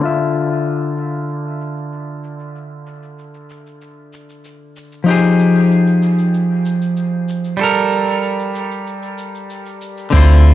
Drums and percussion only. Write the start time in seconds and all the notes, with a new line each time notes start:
0.03 shaker
0.35 shaker
0.50 shaker
0.66 shaker
0.82 shaker
0.97 shaker
1.14 shaker
1.29 shaker
1.61 shaker
1.77 shaker
1.93 shaker
2.24 shaker
2.40 shaker
2.56 shaker
2.87 shaker
3.03 shaker
3.19 shaker
3.35 shaker
3.50 shaker
3.66 shaker
3.82 shaker
4.13 shaker
4.29 shaker
4.45 shaker
4.76 shaker
4.92 shaker
5.08 shaker
5.40 shaker
5.56 shaker
5.71 shaker
5.87 shaker
6.03 shaker
6.19 shaker
6.34 shaker
6.66 shaker
6.82 shaker
6.97 shaker
7.29 shaker
7.45 shaker
7.60 shaker
7.77 shaker
7.92 shaker
8.08 shaker
8.24 shaker
8.40 shaker
8.55 shaker
8.72 shaker
8.87 shaker
9.03 shaker
9.18 shaker
9.35 shaker
9.50 shaker
9.66 shaker
9.82 shaker
9.98 shaker
10.13 kick, closed hi-hat, shaker
10.29 closed hi-hat
10.44 shaker